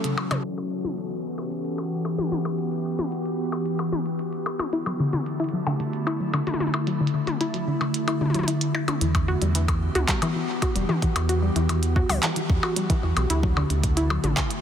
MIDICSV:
0, 0, Header, 1, 6, 480
1, 0, Start_track
1, 0, Tempo, 535714
1, 397, Time_signature, 4, 2, 24, 8
1, 13091, End_track
2, 0, Start_track
2, 0, Title_t, "Ambient pad"
2, 0, Program_c, 0, 92
2, 0, Note_on_c, 0, 54, 78
2, 0, Note_on_c, 0, 61, 89
2, 0, Note_on_c, 0, 66, 91
2, 0, Note_on_c, 0, 69, 93
2, 396, Note_off_c, 0, 54, 0
2, 397, Note_on_c, 0, 52, 77
2, 549, Note_on_c, 0, 59, 86
2, 815, Note_on_c, 0, 67, 72
2, 1768, Note_off_c, 0, 69, 0
2, 1933, Note_off_c, 0, 61, 0
2, 4237, Note_off_c, 0, 52, 0
2, 4237, Note_off_c, 0, 67, 0
2, 4237, Note_on_c, 0, 50, 80
2, 4327, Note_on_c, 0, 57, 77
2, 4639, Note_on_c, 0, 64, 88
2, 5451, Note_off_c, 0, 59, 0
2, 8076, Note_off_c, 0, 57, 0
2, 8077, Note_off_c, 0, 50, 0
2, 8077, Note_off_c, 0, 66, 0
2, 8077, Note_on_c, 0, 52, 83
2, 8201, Note_on_c, 0, 59, 86
2, 8278, Note_on_c, 0, 67, 82
2, 8466, Note_on_c, 0, 66, 82
2, 9613, Note_off_c, 0, 64, 0
2, 11917, Note_off_c, 0, 52, 0
2, 11917, Note_off_c, 0, 67, 0
2, 11917, Note_on_c, 0, 50, 83
2, 11981, Note_on_c, 0, 57, 85
2, 12248, Note_on_c, 0, 64, 76
2, 12805, Note_off_c, 0, 59, 0
2, 13091, Note_off_c, 0, 50, 0
2, 13091, Note_off_c, 0, 57, 0
2, 13091, Note_off_c, 0, 64, 0
2, 13091, Note_off_c, 0, 66, 0
2, 13091, End_track
3, 0, Start_track
3, 0, Title_t, "Synth arpeggio sound"
3, 0, Program_c, 1, 84
3, 37, Note_on_c, 1, 49, 80
3, 131, Note_off_c, 1, 49, 0
3, 277, Note_on_c, 1, 49, 81
3, 333, Note_off_c, 1, 49, 0
3, 4237, Note_on_c, 1, 64, 100
3, 4330, Note_off_c, 1, 64, 0
3, 4357, Note_on_c, 1, 54, 73
3, 4450, Note_off_c, 1, 54, 0
3, 4477, Note_on_c, 1, 50, 102
3, 4533, Note_off_c, 1, 50, 0
3, 4596, Note_on_c, 1, 50, 76
3, 4653, Note_off_c, 1, 50, 0
3, 4836, Note_on_c, 1, 64, 102
3, 4930, Note_off_c, 1, 64, 0
3, 4956, Note_on_c, 1, 54, 75
3, 5050, Note_off_c, 1, 54, 0
3, 5076, Note_on_c, 1, 50, 106
3, 5133, Note_off_c, 1, 50, 0
3, 5196, Note_on_c, 1, 50, 72
3, 5253, Note_off_c, 1, 50, 0
3, 5436, Note_on_c, 1, 64, 101
3, 5530, Note_off_c, 1, 64, 0
3, 5556, Note_on_c, 1, 54, 73
3, 5650, Note_off_c, 1, 54, 0
3, 5676, Note_on_c, 1, 50, 97
3, 5733, Note_off_c, 1, 50, 0
3, 5796, Note_on_c, 1, 50, 74
3, 5853, Note_off_c, 1, 50, 0
3, 6036, Note_on_c, 1, 64, 105
3, 6130, Note_off_c, 1, 64, 0
3, 6156, Note_on_c, 1, 54, 81
3, 6250, Note_off_c, 1, 54, 0
3, 6276, Note_on_c, 1, 50, 97
3, 6333, Note_off_c, 1, 50, 0
3, 6396, Note_on_c, 1, 50, 73
3, 6453, Note_off_c, 1, 50, 0
3, 6636, Note_on_c, 1, 64, 99
3, 6730, Note_off_c, 1, 64, 0
3, 6756, Note_on_c, 1, 54, 76
3, 6850, Note_off_c, 1, 54, 0
3, 6876, Note_on_c, 1, 50, 93
3, 6933, Note_off_c, 1, 50, 0
3, 6997, Note_on_c, 1, 50, 79
3, 7053, Note_off_c, 1, 50, 0
3, 7236, Note_on_c, 1, 64, 95
3, 7330, Note_off_c, 1, 64, 0
3, 7357, Note_on_c, 1, 50, 97
3, 7470, Note_off_c, 1, 50, 0
3, 7477, Note_on_c, 1, 54, 94
3, 7570, Note_off_c, 1, 54, 0
3, 7597, Note_on_c, 1, 64, 80
3, 7653, Note_off_c, 1, 64, 0
3, 7837, Note_on_c, 1, 64, 94
3, 7893, Note_off_c, 1, 64, 0
3, 7957, Note_on_c, 1, 62, 79
3, 8050, Note_off_c, 1, 62, 0
3, 8077, Note_on_c, 1, 52, 90
3, 8133, Note_off_c, 1, 52, 0
3, 8317, Note_on_c, 1, 66, 103
3, 8410, Note_off_c, 1, 66, 0
3, 8437, Note_on_c, 1, 55, 76
3, 8531, Note_off_c, 1, 55, 0
3, 8557, Note_on_c, 1, 52, 104
3, 8613, Note_off_c, 1, 52, 0
3, 8677, Note_on_c, 1, 52, 74
3, 8733, Note_off_c, 1, 52, 0
3, 8917, Note_on_c, 1, 66, 104
3, 9011, Note_off_c, 1, 66, 0
3, 9037, Note_on_c, 1, 55, 81
3, 9131, Note_off_c, 1, 55, 0
3, 9157, Note_on_c, 1, 52, 106
3, 9213, Note_off_c, 1, 52, 0
3, 9277, Note_on_c, 1, 52, 83
3, 9333, Note_off_c, 1, 52, 0
3, 9517, Note_on_c, 1, 66, 100
3, 9610, Note_off_c, 1, 66, 0
3, 9637, Note_on_c, 1, 55, 81
3, 9730, Note_off_c, 1, 55, 0
3, 9757, Note_on_c, 1, 52, 100
3, 9813, Note_off_c, 1, 52, 0
3, 9876, Note_on_c, 1, 52, 79
3, 9933, Note_off_c, 1, 52, 0
3, 10117, Note_on_c, 1, 66, 100
3, 10210, Note_off_c, 1, 66, 0
3, 10237, Note_on_c, 1, 55, 79
3, 10330, Note_off_c, 1, 55, 0
3, 10357, Note_on_c, 1, 52, 106
3, 10413, Note_off_c, 1, 52, 0
3, 10477, Note_on_c, 1, 52, 89
3, 10533, Note_off_c, 1, 52, 0
3, 10717, Note_on_c, 1, 66, 105
3, 10810, Note_off_c, 1, 66, 0
3, 10837, Note_on_c, 1, 55, 78
3, 10930, Note_off_c, 1, 55, 0
3, 10957, Note_on_c, 1, 52, 94
3, 11013, Note_off_c, 1, 52, 0
3, 11076, Note_on_c, 1, 52, 75
3, 11133, Note_off_c, 1, 52, 0
3, 11317, Note_on_c, 1, 66, 102
3, 11410, Note_off_c, 1, 66, 0
3, 11436, Note_on_c, 1, 55, 83
3, 11530, Note_off_c, 1, 55, 0
3, 11557, Note_on_c, 1, 52, 106
3, 11613, Note_off_c, 1, 52, 0
3, 11676, Note_on_c, 1, 52, 75
3, 11733, Note_off_c, 1, 52, 0
3, 11917, Note_on_c, 1, 64, 108
3, 12010, Note_off_c, 1, 64, 0
3, 12037, Note_on_c, 1, 54, 76
3, 12130, Note_off_c, 1, 54, 0
3, 12156, Note_on_c, 1, 50, 105
3, 12213, Note_off_c, 1, 50, 0
3, 12276, Note_on_c, 1, 50, 76
3, 12333, Note_off_c, 1, 50, 0
3, 12516, Note_on_c, 1, 64, 100
3, 12610, Note_off_c, 1, 64, 0
3, 12636, Note_on_c, 1, 54, 77
3, 12730, Note_off_c, 1, 54, 0
3, 12756, Note_on_c, 1, 50, 108
3, 12813, Note_off_c, 1, 50, 0
3, 12876, Note_on_c, 1, 50, 84
3, 12933, Note_off_c, 1, 50, 0
3, 13091, End_track
4, 0, Start_track
4, 0, Title_t, "Analog synth bass"
4, 0, Program_c, 2, 38
4, 8076, Note_on_c, 2, 40, 98
4, 8388, Note_off_c, 2, 40, 0
4, 8436, Note_on_c, 2, 40, 82
4, 8868, Note_off_c, 2, 40, 0
4, 8916, Note_on_c, 2, 38, 100
4, 9006, Note_off_c, 2, 38, 0
4, 9636, Note_on_c, 2, 28, 83
4, 9726, Note_off_c, 2, 28, 0
4, 9997, Note_on_c, 2, 40, 103
4, 10308, Note_off_c, 2, 40, 0
4, 10357, Note_on_c, 2, 40, 84
4, 10788, Note_off_c, 2, 40, 0
4, 10836, Note_on_c, 2, 38, 100
4, 10926, Note_off_c, 2, 38, 0
4, 11196, Note_on_c, 2, 40, 86
4, 11286, Note_off_c, 2, 40, 0
4, 11676, Note_on_c, 2, 40, 89
4, 11766, Note_off_c, 2, 40, 0
4, 11796, Note_on_c, 2, 35, 95
4, 11886, Note_off_c, 2, 35, 0
4, 11916, Note_on_c, 2, 38, 100
4, 12228, Note_off_c, 2, 38, 0
4, 12276, Note_on_c, 2, 38, 84
4, 12708, Note_off_c, 2, 38, 0
4, 12756, Note_on_c, 2, 33, 100
4, 12846, Note_off_c, 2, 33, 0
4, 13091, End_track
5, 0, Start_track
5, 0, Title_t, "Percussion blips"
5, 157, Note_on_c, 9, 76, 81
5, 247, Note_off_c, 9, 76, 0
5, 277, Note_on_c, 9, 76, 78
5, 367, Note_off_c, 9, 76, 0
5, 517, Note_on_c, 9, 76, 55
5, 607, Note_off_c, 9, 76, 0
5, 1237, Note_on_c, 9, 76, 49
5, 1326, Note_off_c, 9, 76, 0
5, 1597, Note_on_c, 9, 76, 47
5, 1687, Note_off_c, 9, 76, 0
5, 1837, Note_on_c, 9, 76, 55
5, 1926, Note_off_c, 9, 76, 0
5, 2197, Note_on_c, 9, 76, 72
5, 2287, Note_off_c, 9, 76, 0
5, 3157, Note_on_c, 9, 76, 48
5, 3246, Note_off_c, 9, 76, 0
5, 3396, Note_on_c, 9, 76, 56
5, 3486, Note_off_c, 9, 76, 0
5, 3996, Note_on_c, 9, 76, 74
5, 4086, Note_off_c, 9, 76, 0
5, 4117, Note_on_c, 9, 76, 72
5, 4206, Note_off_c, 9, 76, 0
5, 4357, Note_on_c, 9, 76, 54
5, 4446, Note_off_c, 9, 76, 0
5, 5077, Note_on_c, 9, 76, 47
5, 5166, Note_off_c, 9, 76, 0
5, 5437, Note_on_c, 9, 76, 46
5, 5526, Note_off_c, 9, 76, 0
5, 5677, Note_on_c, 9, 76, 56
5, 5766, Note_off_c, 9, 76, 0
5, 6037, Note_on_c, 9, 76, 67
5, 6126, Note_off_c, 9, 76, 0
5, 6997, Note_on_c, 9, 76, 44
5, 7086, Note_off_c, 9, 76, 0
5, 7237, Note_on_c, 9, 76, 54
5, 7326, Note_off_c, 9, 76, 0
5, 7836, Note_on_c, 9, 76, 72
5, 7926, Note_off_c, 9, 76, 0
5, 7956, Note_on_c, 9, 76, 68
5, 8046, Note_off_c, 9, 76, 0
5, 8196, Note_on_c, 9, 76, 52
5, 8286, Note_off_c, 9, 76, 0
5, 8677, Note_on_c, 9, 76, 84
5, 8766, Note_off_c, 9, 76, 0
5, 9157, Note_on_c, 9, 76, 51
5, 9247, Note_off_c, 9, 76, 0
5, 9517, Note_on_c, 9, 76, 56
5, 9607, Note_off_c, 9, 76, 0
5, 9998, Note_on_c, 9, 76, 81
5, 10087, Note_off_c, 9, 76, 0
5, 10477, Note_on_c, 9, 76, 55
5, 10567, Note_off_c, 9, 76, 0
5, 10837, Note_on_c, 9, 76, 50
5, 10927, Note_off_c, 9, 76, 0
5, 11317, Note_on_c, 9, 76, 79
5, 11407, Note_off_c, 9, 76, 0
5, 11797, Note_on_c, 9, 76, 49
5, 11886, Note_off_c, 9, 76, 0
5, 12157, Note_on_c, 9, 76, 52
5, 12246, Note_off_c, 9, 76, 0
5, 12637, Note_on_c, 9, 76, 79
5, 12726, Note_off_c, 9, 76, 0
5, 13091, End_track
6, 0, Start_track
6, 0, Title_t, "Drums"
6, 37, Note_on_c, 9, 42, 53
6, 127, Note_off_c, 9, 42, 0
6, 277, Note_on_c, 9, 42, 36
6, 277, Note_on_c, 9, 48, 92
6, 367, Note_off_c, 9, 42, 0
6, 367, Note_off_c, 9, 48, 0
6, 397, Note_on_c, 9, 42, 74
6, 487, Note_off_c, 9, 42, 0
6, 757, Note_on_c, 9, 42, 33
6, 757, Note_on_c, 9, 48, 78
6, 847, Note_off_c, 9, 42, 0
6, 847, Note_off_c, 9, 48, 0
6, 877, Note_on_c, 9, 42, 76
6, 966, Note_off_c, 9, 42, 0
6, 1237, Note_on_c, 9, 42, 34
6, 1326, Note_off_c, 9, 42, 0
6, 1357, Note_on_c, 9, 42, 76
6, 1446, Note_off_c, 9, 42, 0
6, 1477, Note_on_c, 9, 42, 50
6, 1566, Note_off_c, 9, 42, 0
6, 1837, Note_on_c, 9, 42, 72
6, 1926, Note_off_c, 9, 42, 0
6, 1957, Note_on_c, 9, 42, 51
6, 1957, Note_on_c, 9, 48, 89
6, 2046, Note_off_c, 9, 42, 0
6, 2046, Note_off_c, 9, 48, 0
6, 2077, Note_on_c, 9, 48, 73
6, 2167, Note_off_c, 9, 48, 0
6, 2317, Note_on_c, 9, 42, 80
6, 2406, Note_off_c, 9, 42, 0
6, 2437, Note_on_c, 9, 42, 47
6, 2526, Note_off_c, 9, 42, 0
6, 2677, Note_on_c, 9, 42, 33
6, 2677, Note_on_c, 9, 48, 74
6, 2766, Note_off_c, 9, 42, 0
6, 2766, Note_off_c, 9, 48, 0
6, 2797, Note_on_c, 9, 42, 84
6, 2887, Note_off_c, 9, 42, 0
6, 2917, Note_on_c, 9, 42, 52
6, 3007, Note_off_c, 9, 42, 0
6, 3157, Note_on_c, 9, 42, 34
6, 3246, Note_off_c, 9, 42, 0
6, 3276, Note_on_c, 9, 42, 77
6, 3366, Note_off_c, 9, 42, 0
6, 3396, Note_on_c, 9, 42, 52
6, 3486, Note_off_c, 9, 42, 0
6, 3516, Note_on_c, 9, 48, 78
6, 3606, Note_off_c, 9, 48, 0
6, 3636, Note_on_c, 9, 42, 36
6, 3726, Note_off_c, 9, 42, 0
6, 3756, Note_on_c, 9, 42, 73
6, 3846, Note_off_c, 9, 42, 0
6, 3876, Note_on_c, 9, 42, 51
6, 3966, Note_off_c, 9, 42, 0
6, 4117, Note_on_c, 9, 42, 34
6, 4117, Note_on_c, 9, 48, 83
6, 4206, Note_off_c, 9, 42, 0
6, 4206, Note_off_c, 9, 48, 0
6, 4236, Note_on_c, 9, 42, 77
6, 4326, Note_off_c, 9, 42, 0
6, 4357, Note_on_c, 9, 42, 47
6, 4446, Note_off_c, 9, 42, 0
6, 4597, Note_on_c, 9, 42, 33
6, 4597, Note_on_c, 9, 48, 77
6, 4686, Note_off_c, 9, 42, 0
6, 4686, Note_off_c, 9, 48, 0
6, 4716, Note_on_c, 9, 42, 74
6, 4806, Note_off_c, 9, 42, 0
6, 4836, Note_on_c, 9, 42, 21
6, 4877, Note_off_c, 9, 42, 0
6, 4877, Note_on_c, 9, 42, 32
6, 4917, Note_off_c, 9, 42, 0
6, 4917, Note_on_c, 9, 42, 40
6, 5006, Note_off_c, 9, 42, 0
6, 5077, Note_on_c, 9, 42, 35
6, 5166, Note_off_c, 9, 42, 0
6, 5197, Note_on_c, 9, 42, 78
6, 5286, Note_off_c, 9, 42, 0
6, 5317, Note_on_c, 9, 42, 48
6, 5406, Note_off_c, 9, 42, 0
6, 5677, Note_on_c, 9, 42, 72
6, 5766, Note_off_c, 9, 42, 0
6, 5797, Note_on_c, 9, 42, 51
6, 5797, Note_on_c, 9, 48, 77
6, 5857, Note_off_c, 9, 48, 0
6, 5857, Note_on_c, 9, 48, 62
6, 5886, Note_off_c, 9, 42, 0
6, 5917, Note_off_c, 9, 48, 0
6, 5917, Note_on_c, 9, 48, 73
6, 5977, Note_off_c, 9, 48, 0
6, 5977, Note_on_c, 9, 48, 42
6, 6037, Note_on_c, 9, 42, 35
6, 6066, Note_off_c, 9, 48, 0
6, 6126, Note_off_c, 9, 42, 0
6, 6156, Note_on_c, 9, 42, 75
6, 6246, Note_off_c, 9, 42, 0
6, 6337, Note_on_c, 9, 42, 48
6, 6426, Note_off_c, 9, 42, 0
6, 6516, Note_on_c, 9, 42, 33
6, 6516, Note_on_c, 9, 48, 78
6, 6606, Note_off_c, 9, 42, 0
6, 6606, Note_off_c, 9, 48, 0
6, 6636, Note_on_c, 9, 42, 77
6, 6726, Note_off_c, 9, 42, 0
6, 6756, Note_on_c, 9, 42, 51
6, 6846, Note_off_c, 9, 42, 0
6, 7116, Note_on_c, 9, 42, 70
6, 7206, Note_off_c, 9, 42, 0
6, 7237, Note_on_c, 9, 42, 46
6, 7326, Note_off_c, 9, 42, 0
6, 7357, Note_on_c, 9, 48, 36
6, 7397, Note_off_c, 9, 48, 0
6, 7397, Note_on_c, 9, 48, 41
6, 7437, Note_off_c, 9, 48, 0
6, 7437, Note_on_c, 9, 48, 49
6, 7477, Note_off_c, 9, 48, 0
6, 7477, Note_on_c, 9, 42, 33
6, 7477, Note_on_c, 9, 48, 59
6, 7517, Note_off_c, 9, 48, 0
6, 7517, Note_on_c, 9, 48, 65
6, 7557, Note_off_c, 9, 48, 0
6, 7557, Note_on_c, 9, 48, 72
6, 7566, Note_off_c, 9, 42, 0
6, 7597, Note_on_c, 9, 42, 72
6, 7646, Note_off_c, 9, 48, 0
6, 7686, Note_off_c, 9, 42, 0
6, 7716, Note_on_c, 9, 42, 50
6, 7806, Note_off_c, 9, 42, 0
6, 7956, Note_on_c, 9, 42, 34
6, 7956, Note_on_c, 9, 48, 82
6, 8046, Note_off_c, 9, 42, 0
6, 8046, Note_off_c, 9, 48, 0
6, 8076, Note_on_c, 9, 42, 87
6, 8166, Note_off_c, 9, 42, 0
6, 8196, Note_on_c, 9, 42, 52
6, 8197, Note_on_c, 9, 36, 107
6, 8286, Note_off_c, 9, 36, 0
6, 8286, Note_off_c, 9, 42, 0
6, 8436, Note_on_c, 9, 42, 38
6, 8526, Note_off_c, 9, 42, 0
6, 8556, Note_on_c, 9, 42, 88
6, 8646, Note_off_c, 9, 42, 0
6, 8677, Note_on_c, 9, 36, 117
6, 8677, Note_on_c, 9, 42, 57
6, 8766, Note_off_c, 9, 36, 0
6, 8766, Note_off_c, 9, 42, 0
6, 8917, Note_on_c, 9, 42, 38
6, 8917, Note_on_c, 9, 48, 91
6, 9007, Note_off_c, 9, 42, 0
6, 9007, Note_off_c, 9, 48, 0
6, 9037, Note_on_c, 9, 36, 98
6, 9037, Note_on_c, 9, 39, 125
6, 9037, Note_on_c, 9, 42, 86
6, 9126, Note_off_c, 9, 36, 0
6, 9127, Note_off_c, 9, 39, 0
6, 9127, Note_off_c, 9, 42, 0
6, 9157, Note_on_c, 9, 42, 51
6, 9247, Note_off_c, 9, 42, 0
6, 9516, Note_on_c, 9, 36, 114
6, 9517, Note_on_c, 9, 42, 77
6, 9606, Note_off_c, 9, 36, 0
6, 9607, Note_off_c, 9, 42, 0
6, 9637, Note_on_c, 9, 42, 56
6, 9727, Note_off_c, 9, 42, 0
6, 9758, Note_on_c, 9, 48, 92
6, 9847, Note_off_c, 9, 48, 0
6, 9876, Note_on_c, 9, 36, 101
6, 9878, Note_on_c, 9, 42, 37
6, 9966, Note_off_c, 9, 36, 0
6, 9967, Note_off_c, 9, 42, 0
6, 9998, Note_on_c, 9, 42, 82
6, 10087, Note_off_c, 9, 42, 0
6, 10118, Note_on_c, 9, 42, 53
6, 10207, Note_off_c, 9, 42, 0
6, 10357, Note_on_c, 9, 42, 36
6, 10447, Note_off_c, 9, 42, 0
6, 10477, Note_on_c, 9, 42, 85
6, 10567, Note_off_c, 9, 42, 0
6, 10597, Note_on_c, 9, 42, 57
6, 10687, Note_off_c, 9, 42, 0
6, 10716, Note_on_c, 9, 36, 110
6, 10806, Note_off_c, 9, 36, 0
6, 10837, Note_on_c, 9, 46, 77
6, 10837, Note_on_c, 9, 48, 84
6, 10927, Note_off_c, 9, 46, 0
6, 10927, Note_off_c, 9, 48, 0
6, 10957, Note_on_c, 9, 39, 124
6, 10957, Note_on_c, 9, 42, 83
6, 11046, Note_off_c, 9, 39, 0
6, 11046, Note_off_c, 9, 42, 0
6, 11076, Note_on_c, 9, 42, 53
6, 11166, Note_off_c, 9, 42, 0
6, 11197, Note_on_c, 9, 36, 121
6, 11286, Note_off_c, 9, 36, 0
6, 11437, Note_on_c, 9, 42, 84
6, 11526, Note_off_c, 9, 42, 0
6, 11557, Note_on_c, 9, 36, 112
6, 11557, Note_on_c, 9, 42, 53
6, 11646, Note_off_c, 9, 36, 0
6, 11646, Note_off_c, 9, 42, 0
6, 11797, Note_on_c, 9, 42, 37
6, 11886, Note_off_c, 9, 42, 0
6, 11917, Note_on_c, 9, 42, 80
6, 12007, Note_off_c, 9, 42, 0
6, 12036, Note_on_c, 9, 36, 127
6, 12126, Note_off_c, 9, 36, 0
6, 12277, Note_on_c, 9, 42, 36
6, 12366, Note_off_c, 9, 42, 0
6, 12396, Note_on_c, 9, 36, 105
6, 12396, Note_on_c, 9, 42, 86
6, 12486, Note_off_c, 9, 36, 0
6, 12486, Note_off_c, 9, 42, 0
6, 12517, Note_on_c, 9, 42, 55
6, 12606, Note_off_c, 9, 42, 0
6, 12757, Note_on_c, 9, 42, 37
6, 12757, Note_on_c, 9, 48, 86
6, 12846, Note_off_c, 9, 42, 0
6, 12846, Note_off_c, 9, 48, 0
6, 12876, Note_on_c, 9, 36, 117
6, 12877, Note_on_c, 9, 39, 127
6, 12877, Note_on_c, 9, 42, 86
6, 12966, Note_off_c, 9, 36, 0
6, 12966, Note_off_c, 9, 39, 0
6, 12966, Note_off_c, 9, 42, 0
6, 12996, Note_on_c, 9, 42, 51
6, 13086, Note_off_c, 9, 42, 0
6, 13091, End_track
0, 0, End_of_file